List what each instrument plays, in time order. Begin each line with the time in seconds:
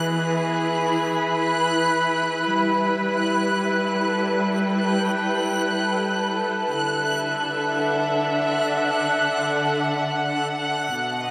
Already playing: string section E3 E4 G#4 B4, synth texture F#6
0.23 string section B5
2.52 string section G3
3.82 string section A4
4.34 string section G5
6.74 string section D3
7.00 string section E5
7.40 string section D4
7.75 string section F#5
10.93 string section B2
11.19 string section D#5